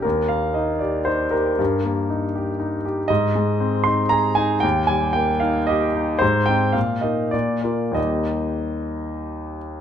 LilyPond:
\new Staff \with { instrumentName = "Grand piano" } { \time 3/4 \key ees \major \tempo 4 = 115 << { bes'8 f''8 ees''8 d''8 c''8 bes'8~ | bes'2~ bes'8 r8 | ees''4. c'''8 bes''8 aes''8 | g''8 aes''8 g''8 f''8 ees''4 |
c''8 g''8 f''8 ees''8 d''8 d''8 | ees''2~ ees''8 r8 | } \\ { ees,8 bes8 ees'8 g'8 ees'8 g'8 | g,8 bes8 ees'8 g'8 ees'8 g'8 | aes,8 aes8 c'8 ees'8 aes'8 ees'8 | ees,8 g8 bes8 ees'8 g'8 ees'8 |
aes,8 <c' ees'>8 bes,8 <bes ees'>8 bes,8 <bes f'>8 | <ees, g bes ees'>2. | } >> }